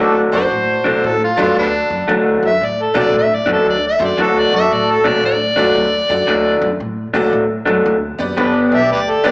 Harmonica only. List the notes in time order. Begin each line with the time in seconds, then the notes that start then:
0.36 C5
1.07 A4
1.24 F4
1.42 F4
1.59 G3 B3 D4
2.47 E5
2.65 D5
2.82 A4
2.99 D5
3.18 E5
3.35 D5
3.52 A4
3.70 D5
3.87 E5
4.04 D5
4.22 A4
4.39 D5
4.56 E5
4.73 D5
4.91 A4
5.07 D5
5.26 D5
8.75 E5
8.92 G4 B4 D5
9.10 A4
9.27 D5